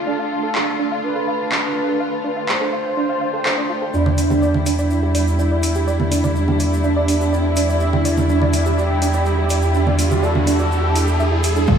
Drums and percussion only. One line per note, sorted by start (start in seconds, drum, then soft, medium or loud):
0.55 clap medium
1.52 clap medium
2.49 clap medium
3.46 clap medium
3.94 shaker soft
4.06 low conga medium
4.18 open hi-hat loud
4.18 shaker medium
4.30 low conga medium
4.30 shaker soft
4.43 shaker soft
4.54 low conga medium
4.66 open hi-hat loud
4.66 shaker medium
4.79 shaker medium
4.90 shaker soft
5.15 open hi-hat medium
5.15 shaker medium
5.27 shaker soft
5.39 shaker soft
5.63 open hi-hat loud
5.63 shaker medium
5.75 shaker soft
5.88 shaker soft
6.00 low conga medium
6.12 open hi-hat loud
6.12 shaker loud
6.24 low conga medium
6.24 shaker medium
6.36 shaker soft
6.48 low conga medium
6.60 open hi-hat loud
6.60 shaker medium
6.73 shaker medium
6.84 shaker soft
7.08 open hi-hat loud
7.08 shaker medium
7.21 shaker medium
7.33 shaker soft
7.56 open hi-hat loud
7.56 shaker medium
7.69 shaker medium
7.80 shaker soft
7.93 low conga medium
8.05 open hi-hat loud
8.05 shaker medium
8.17 low conga medium
8.17 shaker medium
8.29 shaker soft
8.42 low conga medium
8.53 open hi-hat loud
8.53 shaker medium
8.66 shaker medium
8.78 shaker soft
9.02 open hi-hat loud
9.02 shaker medium
9.13 shaker medium
9.25 shaker soft
9.50 open hi-hat loud
9.50 shaker loud
9.62 shaker soft
9.74 shaker soft
9.87 low conga medium
9.99 open hi-hat loud
9.99 shaker loud
10.11 low conga medium
10.11 shaker medium
10.23 shaker soft
10.35 low conga medium
10.47 open hi-hat loud
10.47 shaker medium
10.59 shaker medium
10.72 shaker soft
10.96 open hi-hat medium
10.96 shaker medium
11.08 shaker soft
11.20 shaker soft
11.44 open hi-hat loud
11.44 shaker medium
11.56 shaker soft
11.67 kick loud
11.67 shaker soft